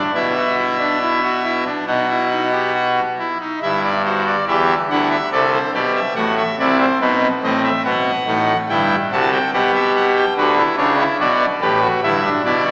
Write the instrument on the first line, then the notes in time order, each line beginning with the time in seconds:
pipe organ
Already playing: D4
0.14 B1 B2 E4 E5
0.36 F#4
0.58 E4
0.79 D4
1.01 E4
1.23 F#4
1.44 E4
1.66 D4
1.87 B1 B2 D#4 F#5
2.08 E4
2.30 D#4
2.52 G4
2.74 F#4
3.18 E4
3.40 D#4
3.62 G1 G2 E4 E5
3.84 D5
4.05 F#4 C5
4.26 D5
4.48 E2 E3 G4 E5
4.90 D2 D3 E4 F#5
5.11 E5
5.32 C2 C3 A4 D5
5.53 C5
5.74 B1 B2 G4 D5
5.95 E5
6.16 A1 A2 F#4 F#5
6.37 E5
6.59 C2 C3 E4 D5
6.80 C5
7.01 B1 B2 D#4 B4
7.43 A1 A2 C4 D#5
7.64 E5
7.85 B1 B2 B3 F#5
8.27 A1 A2 D#4
8.69 G1 G2 E4 G5
9.12 C2 C3 F#4 A5
9.33 G5
9.53 B1 B2 G4 F#5
9.74 E5
9.96 F#5
10.16 G5
10.37 D2 D3 F#4 B4
10.57 E4
10.78 C#2 C#3 D4 C#5
10.98 E4
11.20 B1 B2 F#4 D5
11.61 A1 A2 G4 B4
11.82 F#4
12.03 G1 G2 E4 E5
12.24 D4
12.45 B1 B2 E4 D5
12.65 F#4